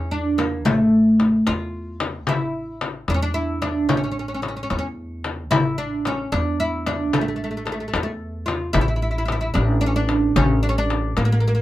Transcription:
0.00 0.67 E2 medium
0.00 0.11 C#4 medium
0.11 0.37 D4 medium
0.38 0.65 A#3 medium
0.38 frame drum medium
0.65 1.43 A1 medium
0.65 1.49 A3 medium
0.65 frame drum medium
1.20 frame drum medium
1.47 2.28 E2 medium
1.47 2.28 F4 medium
1.47 frame drum medium
2.00 frame drum medium
2.27 3.04 A1 medium
2.27 2.78 E4 medium
2.27 frame drum medium
2.81 frame drum medium
3.08 3.89 E2 medium
3.08 3.14 D4 medium
3.08 frame drum medium
3.14 3.21 C#4 medium
3.22 3.34 D4 medium
3.34 3.60 E4 medium
3.62 3.88 D4 medium
3.62 frame drum medium
3.89 4.66 A1 medium
3.89 3.96 C#4 medium
3.89 frame drum medium
3.97 4.02 C#4 medium
4.04 4.10 C#4 soft
4.12 4.18 C#4 soft
4.19 4.26 C#4 medium
4.28 4.33 C#4 soft
4.34 4.41 C#4 medium
4.42 4.47 C#4 soft
4.42 frame drum medium
4.48 4.55 C#4 soft
4.57 4.62 C#4 soft
4.63 4.69 C#4 medium
4.70 5.52 E2 medium
4.70 4.77 C#4 medium
4.70 frame drum medium
4.79 4.86 C#4 medium
5.24 frame drum medium
5.51 6.28 A1 medium
5.51 5.78 E4 loud
5.51 frame drum medium
5.78 6.06 D4 medium
6.05 6.32 C#4 medium
6.05 frame drum medium
6.32 7.13 E2 medium
6.32 6.59 D4 medium
6.32 frame drum medium
6.60 6.86 E4 medium
6.86 7.14 D4 medium
6.86 frame drum medium
7.13 7.89 A1 medium
7.13 7.20 A3 medium
7.13 frame drum medium
7.21 7.27 A3 medium
7.28 7.35 A3 soft
7.36 7.42 A3 soft
7.44 7.50 A3 soft
7.51 7.56 A3 soft
7.57 7.64 A3 soft
7.66 7.71 A3 soft
7.66 frame drum medium
7.72 7.79 A3 medium
7.80 7.87 A3 soft
7.88 7.94 A3 medium
7.94 8.70 E2 medium
7.94 8.02 A3 soft
7.94 frame drum medium
8.03 8.10 A3 medium
8.46 8.73 F4 medium
8.46 frame drum medium
8.73 9.51 A1 medium
8.73 8.80 E4 medium
8.73 frame drum medium
8.81 8.87 E4 medium
8.88 8.95 E4 soft
8.96 9.01 E4 soft
9.02 9.10 E4 medium
9.11 9.17 E4 soft
9.18 9.24 E4 medium
9.25 9.31 E4 medium
9.25 frame drum medium
9.32 9.40 E4 medium
9.41 9.49 E4 medium
9.54 10.32 A1 loud
9.54 9.80 D4 medium
9.54 frame drum medium
9.81 9.86 D4 medium
9.86 9.95 C#4 medium
9.96 10.36 D4 medium
10.09 frame drum medium
10.36 11.13 A1 medium
10.36 10.62 C#4 loud
10.36 frame drum medium
10.63 10.69 D4 medium
10.69 10.76 C#4 medium
10.78 11.19 D4 medium
10.90 frame drum medium
11.17 11.62 A1 medium
11.17 11.24 A#3 medium
11.17 frame drum medium
11.25 11.31 A#3 medium
11.32 11.39 A#3 medium
11.40 11.46 A#3 medium
11.48 11.54 A#3 medium
11.55 11.62 A#3 medium

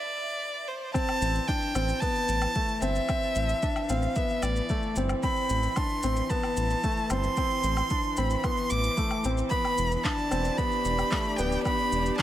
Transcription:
0.00 0.69 D5 loud
0.68 0.94 C5 medium
0.94 12.22 E3 medium
0.94 1.42 C4 loud
0.94 1.49 A5 loud
0.94 kick loud
0.94 shaker soft
1.09 low woodblock medium
1.09 shaker soft
1.21 1.40 A1 loud
1.21 shaker medium
1.35 shaker soft
1.48 1.72 D4 medium
1.48 2.02 G5 loud
1.48 kick loud
1.48 shaker soft
1.62 shaker soft
1.75 1.93 A1 medium
1.75 1.99 C4 medium
1.75 low woodblock medium
1.75 shaker medium
1.88 shaker soft
2.00 2.49 B3 medium
2.00 2.82 A5 loud
2.00 kick loud
2.00 shaker soft
2.15 shaker soft
2.28 2.47 A1 medium
2.28 shaker medium
2.42 low woodblock medium
2.42 shaker soft
2.55 2.79 A3 medium
2.55 kick loud
2.55 shaker soft
2.68 shaker soft
2.81 3.00 G1 loud
2.81 3.06 C4 medium
2.81 3.90 E5 loud
2.81 shaker medium
2.95 shaker soft
3.09 3.56 C4 loud
3.09 kick loud
3.09 low woodblock medium
3.09 shaker soft
3.22 shaker soft
3.35 3.54 A1 loud
3.35 shaker medium
3.49 shaker soft
3.63 3.86 D4 medium
3.63 kick loud
3.63 shaker soft
3.76 low woodblock medium
3.76 shaker soft
3.89 4.07 A1 medium
3.89 4.13 C4 medium
3.89 4.17 F5 medium
3.89 shaker medium
4.02 shaker soft
4.16 4.64 B3 medium
4.16 4.44 E5 loud
4.16 kick loud
4.16 shaker soft
4.29 shaker soft
4.42 4.61 A1 medium
4.42 4.96 D5 medium
4.42 low woodblock medium
4.42 shaker medium
4.56 shaker soft
4.69 4.93 A3 medium
4.69 kick loud
4.69 shaker soft
4.83 shaker soft
4.96 5.14 G1 medium
4.96 5.21 C4 medium
4.96 shaker medium
5.09 low woodblock medium
5.09 shaker soft
5.23 5.71 C4 loud
5.23 5.78 B5 loud
5.23 kick loud
5.23 shaker soft
5.36 shaker soft
5.50 5.68 A1 loud
5.50 shaker medium
5.63 shaker soft
5.76 6.01 D4 medium
5.76 6.31 C6 loud
5.76 kick loud
5.76 low woodblock medium
5.76 shaker soft
5.89 shaker soft
6.03 6.22 A1 loud
6.03 6.27 C4 medium
6.03 shaker medium
6.17 shaker soft
6.30 6.78 B3 medium
6.30 7.13 A5 medium
6.30 kick loud
6.30 shaker soft
6.43 low woodblock medium
6.43 shaker soft
6.57 6.75 A1 medium
6.57 shaker medium
6.70 shaker soft
6.84 7.08 A3 medium
6.84 kick loud
6.84 shaker soft
6.97 shaker soft
7.10 7.29 G1 medium
7.10 7.35 C4 medium
7.10 8.19 C6 loud
7.10 low woodblock medium
7.10 shaker medium
7.23 shaker soft
7.37 7.85 C4 loud
7.37 kick loud
7.37 shaker soft
7.50 shaker soft
7.63 7.82 A1 loud
7.63 shaker medium
7.77 low woodblock medium
7.77 shaker soft
7.90 8.15 D4 medium
7.90 kick loud
7.90 shaker soft
8.03 shaker soft
8.17 8.36 A1 medium
8.17 8.41 C4 medium
8.17 8.46 B5 medium
8.17 shaker medium
8.30 shaker soft
8.44 8.92 B3 medium
8.44 8.72 C6 loud
8.44 kick loud
8.44 low woodblock medium
8.44 shaker soft
8.57 shaker soft
8.70 8.89 A1 loud
8.70 9.24 D6 loud
8.70 shaker medium
8.84 shaker soft
8.97 9.22 A3 medium
8.97 kick loud
8.97 shaker soft
9.11 low woodblock medium
9.11 shaker soft
9.24 9.43 A1 medium
9.24 9.49 C4 medium
9.24 shaker medium
9.37 shaker soft
9.50 9.99 B3 loud
9.50 9.96 B5 loud
9.50 kick loud
9.50 shaker soft
9.65 low woodblock medium
9.65 shaker soft
9.78 9.97 E1 loud
9.78 shaker medium
9.88 12.22 D4 medium
9.88 shaker soft
9.96 10.05 B5 medium
10.04 10.29 D4 medium
10.04 10.58 A5 loud
10.04 kick loud
10.04 clap medium
10.04 shaker soft
10.15 12.22 D5 medium
10.15 shaker soft
10.31 10.50 E1 medium
10.31 10.55 C4 medium
10.31 low woodblock medium
10.31 shaker medium
10.45 shaker soft
10.53 12.22 G4 medium
10.53 11.38 B5 loud
10.58 11.06 B3 medium
10.58 kick loud
10.58 shaker soft
10.72 shaker soft
10.85 11.03 E1 medium
10.85 shaker medium
10.99 low woodblock medium
10.99 shaker soft
11.11 11.36 A3 medium
11.11 kick loud
11.11 clap medium
11.11 shaker soft
11.25 shaker soft
11.37 11.57 D1 medium
11.37 11.63 B3 medium
11.37 11.63 G5 loud
11.37 shaker medium
11.52 shaker soft
11.64 12.13 B3 loud
11.64 12.14 B5 loud
11.64 kick loud
11.64 low woodblock medium
11.64 shaker soft
11.79 shaker soft
11.92 12.11 E1 loud
11.92 shaker medium
12.06 shaker soft
12.18 12.22 A5 loud
12.18 kick loud
12.18 clap medium
12.18 shaker soft

